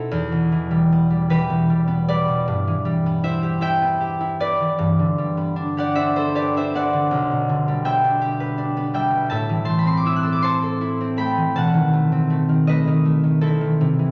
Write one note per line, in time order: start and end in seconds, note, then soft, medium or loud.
0.00 0.14 B2 medium
0.00 0.91 B3 soft
0.00 0.15 D#4 soft
0.00 3.22 E4 soft
0.00 0.15 F#4 medium
0.00 2.40 A4 medium
0.00 1.29 B4 medium
0.00 0.14 C5 medium
0.11 2.50 E2 medium
0.32 1.49 B2 medium
0.52 1.29 E3 medium
0.71 1.09 G3 medium
0.92 1.86 B3 medium
1.10 1.69 G3 medium
1.30 2.51 E3 medium
1.30 3.41 G4 medium
1.30 2.08 B4 medium
1.50 2.27 B2 medium
1.70 2.07 G3 medium
1.87 3.05 B3 medium
2.08 2.84 G3 medium
2.08 4.40 B4 medium
2.08 4.06 D5 medium
2.28 2.50 B2 soft
2.48 4.77 G2 medium
2.67 4.59 E3 medium
2.85 5.17 G3 medium
3.06 3.81 B3 medium
3.23 3.60 E4 medium
3.23 4.83 C5 medium
3.23 3.61 E5 medium
3.43 3.99 G4 medium
3.61 4.19 E4 medium
3.61 4.82 E5 medium
3.61 7.52 G5 loud
3.82 4.39 B3 medium
4.01 5.76 G4 medium
4.21 4.82 E4 medium
4.40 5.36 B3 medium
4.40 6.35 B4 medium
4.40 5.79 D5 medium
4.60 4.82 E3 soft
4.79 7.10 G2 medium
4.99 6.92 D3 soft
5.18 7.67 G3 soft
5.37 6.15 B3 medium
5.56 5.95 D4 medium
5.77 6.34 G4 medium
5.77 6.34 D5 medium
5.77 6.09 F#5 medium
5.95 6.55 D4 medium
5.95 6.15 C5 medium
5.95 6.27 E5 loud
6.16 6.73 B3 medium
6.16 7.13 A4 medium
6.16 6.47 C5 medium
6.35 8.20 G4 medium
6.35 8.39 B4 medium
6.35 6.66 D5 medium
6.56 8.03 D4 medium
6.56 7.14 C5 medium
6.56 6.86 E5 medium
6.74 7.84 B3 medium
6.74 9.35 D5 medium
6.74 8.62 F#5 medium
6.93 7.13 D3 soft
7.11 9.33 B1 medium
7.31 9.09 B2 soft
7.49 9.34 D3 medium
7.68 8.93 G3 medium
7.85 8.75 B3 medium
7.85 8.94 E5 medium
7.85 8.93 G5 medium
8.04 8.57 D4 medium
8.21 9.33 G4 medium
8.40 9.33 B4 medium
8.58 9.32 D4 medium
8.77 9.33 B3 medium
8.93 9.32 G3 soft
8.93 9.30 E5 medium
8.93 9.32 G5 medium
9.11 9.32 B2 soft
9.30 11.56 A2 medium
9.30 11.57 E5 medium
9.30 9.64 A5 loud
9.49 11.36 E3 soft
9.65 11.16 A3 medium
9.65 10.43 A5 medium
9.65 9.86 C6 medium
9.79 9.96 B5 medium
9.85 10.99 C4 medium
9.85 10.02 C6 medium
9.97 10.09 D6 medium
10.06 10.80 E4 medium
10.06 10.18 E6 medium
10.16 10.29 F#6 medium
10.23 10.61 A4 medium
10.23 10.39 E6 medium
10.32 10.50 D6 medium
10.42 14.11 C5 medium
10.42 11.54 A5 medium
10.42 14.11 C6 loud
10.62 13.40 A4 medium
10.81 11.57 E4 medium
11.01 12.11 C4 medium
11.17 11.92 A3 medium
11.17 11.57 G5 medium
11.17 11.80 B5 medium
11.37 11.57 E3 soft
11.56 13.85 B2 medium
11.56 13.86 F#5 medium
11.56 13.85 A5 loud
11.74 12.48 D#3 medium
11.93 12.29 A3 medium
12.12 13.40 C4 medium
12.30 12.67 A3 medium
12.49 12.86 D#3 soft
12.67 13.04 A3 medium
12.67 13.85 B4 medium
12.67 13.84 D#5 medium
12.88 13.22 D#3 medium
13.05 13.84 A3 soft
13.24 13.60 D#3 soft
13.41 14.11 C4 soft
13.41 14.11 E4 medium
13.41 14.11 A4 medium
13.61 13.84 D#3 soft
13.81 14.11 C3 medium
13.99 14.11 E3 soft